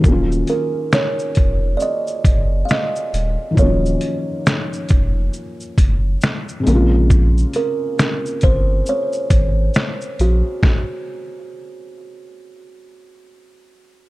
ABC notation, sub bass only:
X:1
M:4/4
L:1/16
Q:"Swing 16ths" 1/4=68
K:Ebdor
V:1 name="Sub bass" clef=bass
E,,,2 z4 F,,,2 z2 G,,,2 z2 E,,, z | E,,,2 z4 F,,,2 z2 G,,,2 z2 B,,,2- | B,,,2 z4 =G,,,2 z2 A,,,2 z2 B,,, z | z16 |]